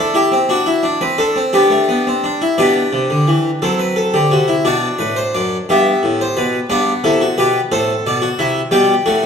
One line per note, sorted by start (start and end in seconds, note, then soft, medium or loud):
0.00 0.15 D4 medium
0.00 0.13 E4 medium
0.00 0.15 A4 medium
0.14 0.32 E4 medium
0.14 0.37 G4 medium
0.32 0.49 C4 medium
0.49 0.67 D4 medium
0.49 1.01 F#4 medium
0.66 0.84 E4 medium
0.83 1.01 D4 medium
1.01 1.19 C4 medium
1.01 1.19 B4 medium
1.18 1.36 D4 medium
1.18 1.40 A4 medium
1.36 1.53 C4 medium
1.53 1.71 B3 medium
1.53 2.23 D4 medium
1.53 2.55 G4 medium
1.70 1.88 A3 medium
1.89 2.06 B3 medium
2.07 2.24 C4 medium
2.24 2.41 D4 medium
2.42 2.58 E4 medium
2.58 2.80 B2 medium
2.58 3.59 D4 medium
2.58 3.59 G4 medium
2.58 3.59 B4 medium
2.93 3.10 C3 medium
3.10 3.27 D3 medium
3.27 3.49 E3 medium
3.62 4.12 F#3 medium
3.62 4.62 C4 medium
3.62 3.79 A4 medium
3.79 3.96 B4 medium
3.96 4.13 A4 medium
4.14 4.30 D3 medium
4.14 4.30 G4 medium
4.31 4.53 C3 medium
4.31 4.48 F#4 medium
4.48 4.65 E4 medium
4.65 4.86 B2 medium
4.65 5.65 D4 medium
4.65 5.65 F#4 medium
4.65 4.87 D5 medium
4.99 5.20 A2 medium
4.99 5.15 B4 medium
5.16 5.33 C5 medium
5.35 5.56 F#2 medium
5.35 5.56 D5 medium
5.69 5.90 G2 medium
5.69 6.68 B3 medium
5.69 6.68 G4 medium
5.69 6.19 E5 medium
6.03 6.24 A2 medium
6.21 6.37 C5 medium
6.37 6.58 B2 medium
6.37 6.57 B4 medium
6.70 6.91 G2 medium
6.70 8.68 B3 medium
6.70 6.91 D4 medium
6.70 6.91 D5 medium
7.04 7.25 C3 medium
7.04 7.20 E4 medium
7.04 7.25 A4 medium
7.21 7.37 F#4 medium
7.38 7.59 B2 medium
7.38 7.59 G4 medium
7.38 7.59 B4 medium
7.72 7.92 A2 medium
7.72 8.20 A4 medium
7.72 7.92 C5 medium
8.06 8.27 B2 medium
8.06 8.27 D5 medium
8.22 8.38 F#4 medium
8.39 8.60 C3 medium
8.39 8.60 E4 medium
8.39 8.60 E5 medium
8.71 8.93 B2 medium
8.71 8.93 G3 medium
8.71 8.93 G4 medium
8.71 9.26 G5 medium
9.06 9.26 A2 medium
9.06 9.23 A3 medium
9.06 9.26 F#4 medium